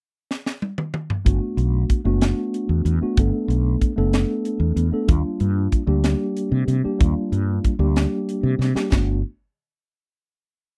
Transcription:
0.31 snare
0.46 snare
0.62 high tom
0.78 mid tom
0.94 mid tom
1.10 floor tom
1.25 fretless electric bass G1, tine electric piano A3 B3 D4 F#4, kick, closed hi-hat
1.57 fretless electric bass B1, closed hi-hat
1.90 kick, closed hi-hat
2.05 fretless electric bass F#1, tine electric piano A3 B3 D4 F#4
2.21 snare, closed hi-hat
2.54 closed hi-hat
2.69 fretless electric bass E2
2.85 fretless electric bass E2, closed hi-hat
3.01 tine electric piano A3 B3 D4 F#4, muted fretless electric bass stroke
3.17 fretless electric bass G1, tine electric piano A3 B3 D4 A4, kick, closed hi-hat
3.48 fretless electric bass B1, closed hi-hat
3.81 kick, closed hi-hat
3.96 fretless electric bass F#1, tine electric piano A3 B3 D4 A4
4.13 snare, closed hi-hat
4.45 closed hi-hat
4.60 fretless electric bass E2
4.76 fretless electric bass E2, closed hi-hat
4.91 tine electric piano A3 B3 D4 A4, muted fretless electric bass stroke
5.07 fretless electric bass D#2, tine electric piano G3 A#3 D4 F4, kick, closed hi-hat
5.40 fretless electric bass G2, closed hi-hat
5.72 kick, closed hi-hat
5.87 fretless electric bass D2, tine electric piano G3 A#3 D4 G4
6.04 snare, closed hi-hat
6.37 closed hi-hat
6.52 fretless electric bass C3
6.68 fretless electric bass C3, closed hi-hat
6.84 tine electric piano G3 A#3 D4 G4, muted fretless electric bass stroke
6.99 fretless electric bass D#2, tine electric piano G3 A#3 D4 F4, kick, closed hi-hat
7.32 fretless electric bass G2, closed hi-hat
7.64 kick, closed hi-hat
7.79 fretless electric bass D2, tine electric piano G3 A#3 D4 G4
7.96 snare, closed hi-hat
8.29 closed hi-hat
8.43 fretless electric bass C3
8.59 fretless electric bass C3, snare
8.74 tine electric piano G3 A#3 D4 G4, muted fretless electric bass stroke, snare
8.90 fretless electric bass G1, tine electric piano A3 B3 D4 F#4, kick, snare, crash

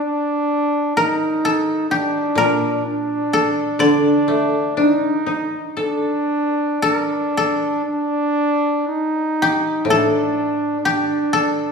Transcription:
0.04 trumpet D4
0.96 trumpet D#4, koto A#4
1.45 koto A4
1.90 trumpet D4, koto G4
2.35 koto A#2 A#4
2.86 trumpet D4
3.33 koto A4
3.79 koto D3 D5, trumpet D4
4.28 koto A3
4.77 koto D4, trumpet D#4
5.26 koto D#4
5.74 trumpet D4, koto A4
6.82 trumpet D4, koto A4
6.94 koto A#4
7.37 koto A4
7.85 trumpet D4
8.88 trumpet D#4
9.42 koto G4
9.85 koto A2, trumpet D4
9.90 koto A4
10.81 trumpet D4
10.85 koto G4
11.33 koto A4

